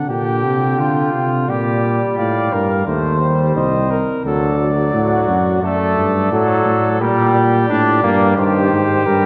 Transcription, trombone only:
0, 0, Header, 1, 2, 480
1, 0, Start_track
1, 0, Tempo, 690449
1, 65, Time_signature, 4, 2, 24, 8
1, 6436, End_track
2, 0, Start_track
2, 0, Title_t, "Trombone"
2, 0, Program_c, 0, 57
2, 65, Note_on_c, 0, 50, 73
2, 1015, Note_off_c, 0, 50, 0
2, 1034, Note_on_c, 0, 55, 69
2, 1978, Note_off_c, 0, 55, 0
2, 1995, Note_on_c, 0, 57, 69
2, 2231, Note_off_c, 0, 57, 0
2, 2238, Note_on_c, 0, 55, 71
2, 2755, Note_off_c, 0, 55, 0
2, 2961, Note_on_c, 0, 54, 73
2, 3181, Note_off_c, 0, 54, 0
2, 3194, Note_on_c, 0, 54, 77
2, 3900, Note_off_c, 0, 54, 0
2, 3914, Note_on_c, 0, 57, 93
2, 4384, Note_off_c, 0, 57, 0
2, 4392, Note_on_c, 0, 54, 95
2, 4862, Note_off_c, 0, 54, 0
2, 4873, Note_on_c, 0, 55, 98
2, 5340, Note_off_c, 0, 55, 0
2, 5351, Note_on_c, 0, 62, 100
2, 5581, Note_off_c, 0, 62, 0
2, 5585, Note_on_c, 0, 58, 99
2, 5817, Note_off_c, 0, 58, 0
2, 5822, Note_on_c, 0, 51, 87
2, 6294, Note_off_c, 0, 51, 0
2, 6306, Note_on_c, 0, 55, 83
2, 6436, Note_off_c, 0, 55, 0
2, 6436, End_track
0, 0, End_of_file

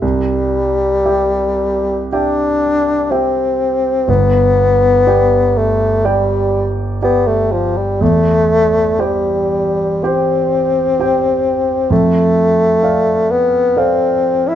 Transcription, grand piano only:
0, 0, Header, 1, 2, 480
1, 0, Start_track
1, 0, Key_signature, 0, "major"
1, 0, Tempo, 1050788
1, 11, Time_signature, 4, 2, 24, 8
1, 971, Tempo, 977199
1, 3371, Tempo, 990099
1, 4331, Tempo, 1043478
1, 4811, Tempo, 960000
1, 5291, Tempo, 911854
1, 6251, Tempo, 938967
1, 7136, End_track
2, 0, Start_track
2, 0, Title_t, "Grand piano"
2, 0, Program_c, 0, 0
2, 0, Control_c, 0, 64, 127
2, 9, Note_on_c, 0, 36, 60
2, 20, Control_c, 0, 64, 0
2, 87, Control_c, 0, 64, 127
2, 466, Note_off_c, 0, 36, 0
2, 482, Note_on_c, 0, 76, 44
2, 483, Note_on_c, 0, 67, 47
2, 485, Note_on_c, 0, 79, 45
2, 954, Note_off_c, 0, 67, 0
2, 954, Note_off_c, 0, 76, 0
2, 955, Note_off_c, 0, 79, 0
2, 970, Note_on_c, 0, 67, 48
2, 973, Note_on_c, 0, 76, 47
2, 974, Note_on_c, 0, 79, 52
2, 1430, Note_off_c, 0, 67, 0
2, 1432, Note_off_c, 0, 76, 0
2, 1432, Note_off_c, 0, 79, 0
2, 1454, Note_on_c, 0, 67, 47
2, 1457, Note_on_c, 0, 76, 48
2, 1460, Note_on_c, 0, 79, 47
2, 1912, Note_off_c, 0, 67, 0
2, 1913, Note_off_c, 0, 76, 0
2, 1915, Note_off_c, 0, 79, 0
2, 1930, Note_on_c, 0, 31, 63
2, 1939, Control_c, 0, 64, 0
2, 2027, Control_c, 0, 64, 127
2, 2400, Note_off_c, 0, 31, 0
2, 2417, Note_on_c, 0, 67, 45
2, 2419, Note_on_c, 0, 74, 43
2, 2422, Note_on_c, 0, 79, 43
2, 2876, Note_off_c, 0, 67, 0
2, 2877, Note_off_c, 0, 74, 0
2, 2879, Note_off_c, 0, 79, 0
2, 2895, Note_on_c, 0, 67, 47
2, 2898, Note_on_c, 0, 74, 52
2, 2901, Note_on_c, 0, 79, 54
2, 3353, Note_off_c, 0, 67, 0
2, 3354, Note_off_c, 0, 74, 0
2, 3355, Note_off_c, 0, 79, 0
2, 3377, Note_on_c, 0, 67, 46
2, 3378, Note_on_c, 0, 74, 46
2, 3379, Note_on_c, 0, 79, 49
2, 3837, Note_off_c, 0, 67, 0
2, 3837, Note_off_c, 0, 74, 0
2, 3838, Note_off_c, 0, 79, 0
2, 3854, Note_on_c, 0, 40, 65
2, 3863, Control_c, 0, 64, 0
2, 3953, Control_c, 0, 64, 127
2, 4318, Note_off_c, 0, 40, 0
2, 4328, Note_on_c, 0, 67, 44
2, 4329, Note_on_c, 0, 72, 46
2, 4332, Note_on_c, 0, 79, 47
2, 4792, Note_off_c, 0, 67, 0
2, 4792, Note_off_c, 0, 72, 0
2, 4794, Note_off_c, 0, 79, 0
2, 4813, Note_on_c, 0, 67, 52
2, 4813, Note_on_c, 0, 79, 54
2, 4814, Note_on_c, 0, 72, 50
2, 5272, Note_off_c, 0, 67, 0
2, 5273, Note_off_c, 0, 72, 0
2, 5273, Note_off_c, 0, 79, 0
2, 5291, Note_on_c, 0, 67, 48
2, 5295, Note_on_c, 0, 72, 45
2, 5297, Note_on_c, 0, 79, 54
2, 5748, Note_off_c, 0, 67, 0
2, 5750, Note_off_c, 0, 72, 0
2, 5751, Note_off_c, 0, 79, 0
2, 5769, Note_on_c, 0, 41, 63
2, 5778, Control_c, 0, 64, 0
2, 5868, Control_c, 0, 64, 127
2, 6237, Note_off_c, 0, 41, 0
2, 6256, Note_on_c, 0, 69, 43
2, 6261, Note_on_c, 0, 74, 42
2, 6261, Note_on_c, 0, 77, 49
2, 6715, Note_off_c, 0, 69, 0
2, 6718, Note_off_c, 0, 74, 0
2, 6718, Note_off_c, 0, 77, 0
2, 6735, Note_on_c, 0, 69, 48
2, 6735, Note_on_c, 0, 74, 48
2, 6739, Note_on_c, 0, 77, 52
2, 7136, Note_off_c, 0, 69, 0
2, 7136, Note_off_c, 0, 74, 0
2, 7136, Note_off_c, 0, 77, 0
2, 7136, End_track
0, 0, End_of_file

